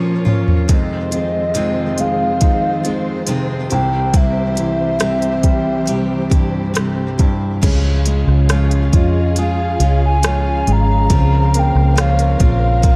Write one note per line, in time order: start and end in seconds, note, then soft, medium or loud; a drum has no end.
0.00 0.26 A#2 medium
0.00 0.66 A#2 medium
0.00 0.27 F3 medium
0.00 0.66 F3 soft
0.00 0.67 F3 soft
0.00 0.27 A#3 medium
0.00 0.67 A#3 medium
0.00 0.25 C#4 medium
0.00 0.28 C#4 soft
0.00 0.67 C#4 soft
0.00 0.24 F4 medium
0.00 0.72 F4 soft
0.00 0.66 A#4 soft
0.00 0.67 A#4 medium
0.00 0.67 C#5 medium
0.25 0.69 A#3 soft
0.25 0.69 C#4 soft
0.25 0.69 F4 medium
0.25 mid tom medium
0.48 floor tom medium
0.68 1.12 F2 medium
0.68 3.67 F2 medium
0.68 1.12 C3 medium
0.68 1.13 D#3 medium
0.68 3.69 D#3 medium
0.68 1.12 G#3 medium
0.68 3.68 G#3 medium
0.68 1.11 C4 medium
0.68 7.60 C4 medium
0.68 1.10 F4 medium
0.68 3.69 F4 medium
0.68 7.60 C5 medium
0.68 2.02 D#5 medium
0.68 kick medium
0.68 closed hi-hat medium
1.11 1.54 D#3 soft
1.11 1.54 G#3 soft
1.11 1.98 G#3 soft
1.11 1.55 C4 soft
1.11 1.55 F4 soft
1.11 closed hi-hat medium
1.54 2.41 F2 medium
1.54 2.41 C3 medium
1.54 2.39 D#3 medium
1.54 2.40 G#3 medium
1.54 2.42 C4 medium
1.54 3.25 C4 soft
1.54 2.42 F4 medium
1.54 closed hi-hat medium
1.98 2.84 G#3 soft
1.98 3.29 F5 loud
1.98 closed hi-hat medium
2.40 2.84 D#3 soft
2.40 2.85 G#3 soft
2.40 2.84 C4 soft
2.40 3.68 D#4 soft
2.40 2.82 F4 soft
2.40 kick medium
2.40 closed hi-hat medium
2.83 3.27 D#3 soft
2.83 3.27 G#3 soft
2.83 3.69 G#3 soft
2.83 3.28 C4 soft
2.83 3.27 F4 soft
2.83 closed hi-hat soft
3.27 3.71 F2 medium
3.27 3.71 C3 medium
3.27 3.70 C3 soft
3.27 3.71 D#3 medium
3.27 3.71 G#3 medium
3.27 3.71 C4 medium
3.27 3.69 F4 medium
3.27 closed hi-hat medium
3.70 7.16 C2 medium
3.70 7.59 E3 medium
3.70 7.59 G3 medium
3.70 4.13 C4 soft
3.70 4.13 E4 soft
3.70 4.14 G4 soft
3.70 7.59 G4 medium
3.70 4.18 G5 loud
3.70 closed hi-hat soft
4.13 4.57 C3 soft
4.13 4.57 G3 soft
4.13 4.57 C4 medium
4.13 4.56 E4 medium
4.13 4.54 G4 medium
4.13 6.77 E5 loud
4.13 kick medium
4.13 closed hi-hat medium
4.55 6.28 E3 soft
4.55 4.99 C4 soft
4.55 4.99 E4 soft
4.55 4.99 G4 soft
4.55 closed hi-hat medium
4.99 5.87 C3 medium
4.99 5.88 C3 soft
4.99 5.84 G3 medium
4.99 5.86 C4 medium
4.99 5.87 E4 medium
4.99 5.87 G4 medium
4.99 cross-stick medium
4.99 closed hi-hat medium
5.22 closed hi-hat soft
5.43 7.16 G3 soft
5.43 kick medium
5.43 closed hi-hat medium
5.86 6.75 C3 soft
5.86 6.30 G3 soft
5.86 6.31 C4 soft
5.86 6.30 E4 soft
5.86 6.29 G4 soft
5.86 closed hi-hat medium
6.30 7.19 G2 soft
6.30 6.74 C4 soft
6.30 6.74 E4 soft
6.30 6.74 G4 soft
6.30 kick medium
6.30 closed hi-hat medium
6.74 7.19 C3 medium
6.74 7.61 C3 soft
6.74 7.19 G3 medium
6.74 7.19 C4 medium
6.74 7.18 E4 medium
6.74 7.17 G4 medium
6.74 cross-stick medium
6.74 closed hi-hat medium
7.18 7.62 G2 medium
7.18 7.62 C4 soft
7.18 7.63 E4 soft
7.18 7.62 G4 soft
7.18 kick medium
7.18 closed hi-hat soft
7.62 8.24 C#2 medium
7.62 8.49 C#3 medium
7.62 12.96 C#3 medium
7.62 11.07 C#3 medium
7.62 8.48 F3 medium
7.62 8.49 G#3 medium
7.62 8.50 C#4 medium
7.62 11.07 F4 soft
7.62 8.51 F4 medium
7.62 11.06 G#4 medium
7.62 12.96 F5 medium
7.62 kick medium
7.62 closed hi-hat medium
7.62 crash medium
8.06 9.77 G#3 soft
8.06 closed hi-hat medium
8.27 8.89 C#2 medium
8.27 cross-stick soft
8.49 8.93 F3 medium
8.49 8.93 G#3 medium
8.49 10.20 C#4 soft
8.49 8.92 C#4 medium
8.49 8.91 F4 medium
8.49 cross-stick medium
8.49 closed hi-hat medium
8.71 closed hi-hat soft
8.92 9.77 F2 medium
8.92 9.36 G#3 soft
8.92 9.37 C#4 soft
8.92 9.37 F4 soft
8.92 10.64 F4 soft
8.92 9.35 D#5 medium
8.92 kick medium
8.92 closed hi-hat medium
9.36 9.80 F3 medium
9.36 9.81 G#3 soft
9.36 9.80 C#4 medium
9.36 9.79 F4 medium
9.36 11.07 G#4 soft
9.36 10.00 F5 medium
9.36 closed hi-hat medium
9.80 10.63 C#2 medium
9.80 10.23 G#3 soft
9.80 10.24 C#4 soft
9.80 10.24 F4 soft
9.80 closed hi-hat medium
10.06 10.74 G#5 medium
10.23 11.09 F3 medium
10.23 11.10 G#3 soft
10.23 11.08 C#4 soft
10.23 11.11 C#4 soft
10.23 11.11 F4 medium
10.23 cross-stick medium
10.23 closed hi-hat medium
10.67 11.08 G#1 medium
10.67 11.10 G#3 soft
10.67 closed hi-hat soft
10.72 11.61 A#5 loud
11.10 11.71 C#2 medium
11.10 11.97 C#3 medium
11.10 12.96 C#3 medium
11.10 11.94 F3 medium
11.10 11.96 A#3 soft
11.10 11.97 C4 medium
11.10 11.97 F4 medium
11.10 12.96 A#4 medium
11.10 12.96 C5 medium
11.10 kick medium
11.10 closed hi-hat medium
11.54 12.96 A#3 soft
11.54 closed hi-hat medium
11.59 12.02 G5 loud
11.75 12.36 C#2 medium
11.75 cross-stick soft
11.96 12.39 F3 medium
11.96 12.40 A#3 medium
11.96 12.40 C4 medium
11.96 12.96 C#4 soft
11.96 12.38 F4 medium
11.96 cross-stick medium
11.96 closed hi-hat medium
12.01 12.42 F5 medium
12.19 closed hi-hat soft
12.39 12.96 A#1 medium
12.39 12.82 A#3 soft
12.39 12.83 C4 soft
12.39 12.83 F4 soft
12.39 12.96 F4 soft
12.39 12.96 F5 medium
12.39 kick medium
12.39 closed hi-hat medium
12.82 12.96 F3 medium
12.82 12.96 A#3 medium
12.82 12.96 C4 medium
12.82 12.96 F4 medium
12.82 12.96 A#4 soft
12.82 kick medium
12.82 closed hi-hat medium